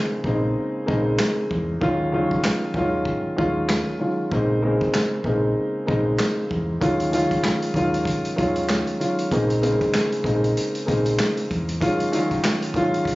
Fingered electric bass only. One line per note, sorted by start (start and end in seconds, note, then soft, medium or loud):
0.24 0.52 A#1 medium
0.89 1.16 A#1 medium
1.51 1.78 E2 medium
1.82 2.25 D#2 loud
2.31 2.43 C#2 medium
2.74 3.02 D#2 medium
3.39 3.82 D#2 medium
4.32 4.75 A#1 loud
4.81 4.93 G#1 medium
5.24 5.52 A#1 medium
5.89 6.16 A#1 medium
6.51 6.78 E2 medium
6.82 7.25 D#2 loud
7.31 7.43 C#2 medium
7.74 8.02 D#2 medium
8.39 8.82 D#2 medium
9.32 9.75 A#1 loud
9.81 9.93 G#1 medium
10.24 10.52 A#1 medium
10.89 11.16 A#1 medium
11.51 11.78 E2 medium